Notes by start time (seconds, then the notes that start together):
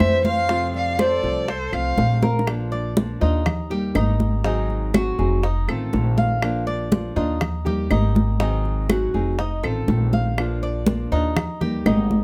Already playing: C5 E5
0.00 F2 E3 G3 C4 E4, high bongo, low bongo, high conga, claves
0.25 C5 F5, high bongo, high conga
0.49 C3 F3 A3 C4 F4, high bongo, high conga
0.74 D5 F5, high conga
0.98 F3 A3 C4 F4 A4 C5 D5, high bongo, high conga, claves
1.23 C2 F3 A3 C4 F4, high bongo, high conga
1.48 A4 C5, muted nylon-string guitar stroke, high bongo, high conga
1.72 C2 F3 A3 C4 F4 C5 F5, high bongo, high conga, claves
1.97 A#1 F3 A3 C4 F4, high bongo, low bongo, high conga
2.22 A#4, high bongo, high conga
2.39 low bongo
2.47 F3 A#3 D4 F4, high bongo, high conga, claves
2.72 D5, high conga
2.96 F3 A#3 D4 F4, high bongo, high conga
3.21 D#2 A#3 D4 D#4 F4, high bongo, high conga
3.46 muted nylon-string guitar stroke, high bongo, high conga, low conga, claves
3.70 G3 A#3 D#4 G4, high bongo, high conga
3.95 G#1 G3 A#3 D#4 G4, high bongo, low bongo, high conga, claves
4.20 high bongo, high conga
4.44 D#3 F#3 C4 D#4 G#4, high bongo, high conga
4.70 high conga
4.93 F#3 C4 D#4 F#4 G#4, high bongo, high conga, claves
5.18 F1 F#3 C4 D#4 G#4, high bongo, high conga
5.43 D#4, muted nylon-string guitar stroke, high bongo, high conga
5.68 A1 D#3 A3 C4 F4 A4, high bongo, high conga, claves
5.93 A#1 D#3 A3 C4 F4, high bongo, low bongo, high conga
6.18 F5, high bongo, high conga
6.42 F3 A#3 D4 F4, high bongo, high conga, claves
6.67 D5, high conga
6.91 F3 A#3 D4 F4, high bongo, high conga
7.16 D#2 A#3 D4 D#4 F4, high bongo, high conga
7.41 muted nylon-string guitar stroke, high bongo, high conga, low conga, claves
7.65 G3 A#3 D#4 G4, high bongo, high conga, low conga
7.90 G#1 G3 A#3 D#4 G4, high bongo, low bongo, high conga, claves
8.15 high bongo, high conga
8.39 D#3 F#3 C4 D#4 G#4, high bongo, high conga
8.65 high conga
8.89 F#3 C4 D#4 F#4 G#4, high bongo, high conga, claves
9.14 F1 F#3 C4 D#4 G#4, high bongo, high conga
9.39 D#4, muted nylon-string guitar stroke, high bongo, high conga
9.63 A1 D#3 A3 C4 F4 A4, high bongo, high conga, claves
9.88 A#1 D#3 A3 C4 F4, high bongo, low bongo, high conga
10.13 F5, high bongo, high conga
10.38 F3 A#3 D4 F4, high bongo, high conga, claves
10.63 D5, high conga
10.86 F3 A#3 D4 F4, high bongo, high conga
11.12 D#2 A#3 D4 D#4 F4, high bongo, high conga
11.37 muted nylon-string guitar stroke, high bongo, high conga, low conga, claves
11.61 G3 A#3 D#4 G4, high bongo, high conga, low conga
11.86 G#1 G3 A#3 D#4 G4, high bongo, low bongo, high conga, claves
12.11 high bongo, high conga